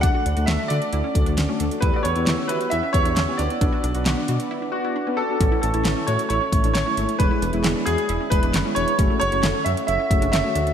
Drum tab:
HH |x-xxx-xxx-xxx-xx|x-xxx-xxx-xxx-xx|x-xxx-xx--------|x-xxx-xxx-xxx-xx|
CP |----------------|----x-------x---|----x-----------|----x-------x---|
SD |----o-------o---|----o-------o---|----o-----------|----o-------o---|
BD |o---------o-----|o---------o-----|o---------------|o---------o-----|

HH |x-xxx-xxx-xxx-xx|x-xxx-xxx-xxx-xx|
CP |----x-------x---|----x-------x---|
SD |----o-------o---|----o-------o---|
BD |o---------o-----|o---------o-----|